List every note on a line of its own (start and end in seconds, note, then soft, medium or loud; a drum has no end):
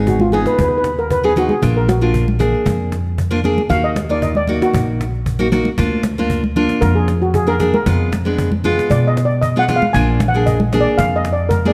0.00 0.44 G#1 loud
0.00 0.18 B3 medium
0.00 0.18 D#4 medium
0.00 0.18 G#4 medium
0.07 0.22 F#4 medium
0.07 cajon bass medium
0.20 0.33 F4 medium
0.20 high conga medium
0.32 0.88 B3 medium
0.32 0.88 D#4 medium
0.32 0.47 G#4 medium
0.32 0.88 G#4 medium
0.32 cajon slap soft
0.32 low conga medium
0.46 0.53 B4 medium
0.46 cajon slap medium
0.54 0.60 B4 medium
0.59 1.48 D#2 medium
0.59 0.67 B4 medium
0.59 cajon bass loud
0.59 high conga medium
0.69 0.77 B4 medium
0.78 0.83 B4 medium
0.84 0.92 B4 medium
0.84 cajon slap medium
0.98 1.11 A#4 medium
0.98 cajon slap soft
1.11 1.25 B4 medium
1.11 cajon bass medium
1.24 1.32 B3 medium
1.24 1.32 D#4 medium
1.24 1.32 G#4 medium
1.24 1.38 G#4 medium
1.36 1.53 B3 medium
1.36 1.53 D#4 medium
1.36 1.53 F4 medium
1.36 1.50 F#4 medium
1.36 cajon slap medium
1.36 low conga medium
1.49 1.77 G#4 medium
1.49 cajon slap soft
1.49 high conga medium
1.62 2.52 A#1 medium
1.62 1.86 A#3 medium
1.62 1.86 D4 medium
1.62 1.86 F4 medium
1.62 cajon bass loud
1.62 low conga medium
1.77 1.89 A#4 medium
1.89 2.03 F#4 medium
1.89 cajon slap medium
1.89 high conga medium
2.01 2.25 A#3 medium
2.01 2.25 D4 medium
2.01 3.28 F4 medium
2.01 2.25 F4 medium
2.01 cajon slap soft
2.14 cajon bass medium
2.28 high conga medium
2.39 2.95 A#3 medium
2.39 2.95 D4 medium
2.39 2.95 G#4 medium
2.39 cajon slap medium
2.39 low conga medium
2.54 cajon slap soft
2.66 3.55 F2 medium
2.66 cajon bass loud
2.66 high conga medium
2.92 cajon slap medium
3.06 cajon slap soft
3.18 cajon bass medium
3.31 3.39 A#3 medium
3.31 3.39 D4 medium
3.31 3.39 F4 medium
3.44 3.60 A#3 medium
3.44 3.61 D4 medium
3.44 3.61 G#4 medium
3.44 cajon slap soft
3.44 low conga medium
3.58 cajon slap soft
3.58 high conga medium
3.69 4.59 D#2 medium
3.69 3.93 A#3 medium
3.69 3.93 D#4 medium
3.69 3.94 F#4 medium
3.69 3.84 F5 loud
3.69 cajon bass medium
3.69 low conga medium
3.84 4.11 D#5 medium
3.96 cajon slap medium
3.96 high conga medium
4.09 4.33 A#3 medium
4.09 4.33 D#4 medium
4.09 4.33 F4 medium
4.09 4.23 D5 medium
4.09 cajon slap soft
4.22 4.36 D#5 medium
4.22 cajon bass medium
4.35 4.63 D5 loud
4.35 high conga medium
4.48 5.03 A#3 medium
4.48 5.03 D#4 medium
4.48 5.03 F#4 medium
4.48 cajon slap soft
4.48 low conga medium
4.62 5.36 F#4 medium
4.62 cajon slap medium
4.74 5.63 A#1 medium
4.74 cajon bass loud
4.74 high conga medium
5.01 cajon slap medium
5.15 cajon slap soft
5.26 cajon bass medium
5.39 5.47 A#3 medium
5.39 5.47 D#4 medium
5.39 5.47 F#4 loud
5.52 5.68 A#3 medium
5.52 5.68 D#4 medium
5.52 5.68 F#4 medium
5.52 cajon slap medium
5.52 low conga medium
5.65 cajon slap soft
5.65 high conga medium
5.78 6.67 D2 loud
5.78 6.01 A#3 medium
5.78 6.02 D4 medium
5.78 6.02 F4 loud
5.78 cajon bass loud
5.78 low conga medium
6.03 cajon slap loud
6.03 high conga medium
6.16 6.41 A#3 medium
6.16 6.41 D4 medium
6.16 6.42 F4 medium
6.16 cajon slap soft
6.30 cajon bass medium
6.44 high conga medium
6.56 7.11 A#3 medium
6.56 7.11 D4 medium
6.56 7.11 F4 loud
6.56 cajon slap soft
6.56 low conga medium
6.69 cajon slap medium
6.81 7.71 F2 medium
6.81 6.96 A#4 loud
6.81 cajon bass loud
6.81 high conga medium
6.95 7.22 G#4 medium
7.08 cajon slap medium
7.22 7.34 F#4 medium
7.22 cajon slap soft
7.34 7.48 G#4 loud
7.34 cajon bass medium
7.47 7.55 A#3 medium
7.47 7.55 D4 medium
7.47 7.55 G#4 medium
7.47 7.73 A#4 loud
7.59 7.76 A#3 medium
7.59 7.76 D4 medium
7.59 7.76 G#4 medium
7.59 cajon slap medium
7.59 low conga medium
7.74 8.48 A#4 medium
7.74 cajon slap soft
7.74 high conga medium
7.86 8.76 F2 medium
7.86 8.10 G#3 medium
7.86 8.10 B3 medium
7.86 8.10 F4 medium
7.86 cajon bass loud
7.86 low conga medium
8.12 cajon slap loud
8.12 high conga medium
8.25 8.49 G#3 medium
8.25 8.49 B3 medium
8.25 8.49 D4 medium
8.25 cajon slap soft
8.39 cajon bass medium
8.52 high conga medium
8.64 9.19 G#3 medium
8.64 9.19 B3 medium
8.64 9.19 F4 loud
8.64 cajon slap soft
8.64 low conga medium
8.79 cajon slap medium
8.90 9.80 B2 medium
8.90 9.08 D5 medium
8.90 cajon bass loud
8.90 high conga medium
9.07 9.25 D#5 medium
9.17 cajon slap medium
9.25 9.43 D5 medium
9.30 cajon slap soft
9.42 9.60 D#5 medium
9.42 cajon bass medium
9.56 9.63 G#3 medium
9.56 9.64 B3 medium
9.56 9.64 F4 medium
9.56 9.77 F#5 loud
9.68 9.84 G#3 medium
9.68 9.84 B3 medium
9.68 9.85 F4 medium
9.68 cajon slap medium
9.68 low conga medium
9.76 9.94 F5 medium
9.82 cajon slap soft
9.82 high conga medium
9.93 10.84 A#1 medium
9.93 10.18 A#3 medium
9.93 10.18 D4 medium
9.93 10.18 F4 medium
9.93 10.30 G#5 loud
9.93 cajon bass loud
9.93 low conga medium
10.20 cajon slap loud
10.20 high conga medium
10.20 low conga medium
10.28 10.47 F#5 medium
10.34 10.57 A#3 medium
10.34 10.58 D4 medium
10.34 10.58 G#4 medium
10.34 cajon slap soft
10.46 10.82 D#5 medium
10.46 cajon bass medium
10.60 high conga medium
10.72 11.28 A#3 medium
10.72 11.28 D4 medium
10.72 11.28 G#4 medium
10.72 cajon slap medium
10.72 low conga medium
10.81 10.97 D5 loud
10.98 11.73 F2 medium
10.98 11.16 F5 loud
10.98 cajon bass loud
10.98 high conga medium
11.16 11.34 D#5 loud
11.25 cajon slap medium
11.33 11.51 D5 medium
11.38 cajon slap soft
11.49 11.66 A#4 medium
11.49 cajon bass medium
11.49 high conga soft
11.65 11.72 A#3 medium
11.65 11.72 D4 medium
11.65 11.73 G#4 medium
11.65 11.73 D5 medium
11.65 high conga medium